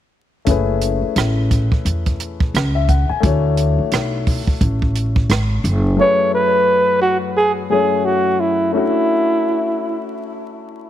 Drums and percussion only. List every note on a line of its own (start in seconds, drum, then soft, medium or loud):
0.47 kick medium
0.47 closed hi-hat medium
0.82 closed hi-hat medium
1.16 cross-stick medium
1.16 closed hi-hat medium
1.51 kick medium
1.51 closed hi-hat medium
1.72 kick medium
1.86 closed hi-hat medium
2.06 kick medium
2.06 closed hi-hat soft
2.20 closed hi-hat medium
2.40 kick medium
2.55 cross-stick loud
2.55 closed hi-hat medium
2.89 kick medium
2.89 closed hi-hat medium
3.23 kick loud
3.23 closed hi-hat medium
3.57 closed hi-hat medium
3.92 cross-stick medium
3.92 closed hi-hat medium
4.27 kick medium
4.27 open hi-hat soft
4.47 kick medium
4.61 kick medium
4.61 closed hi-hat medium
4.82 kick medium
4.96 closed hi-hat medium
5.16 kick medium
5.30 cross-stick loud
5.30 closed hi-hat medium
5.65 closed hi-hat medium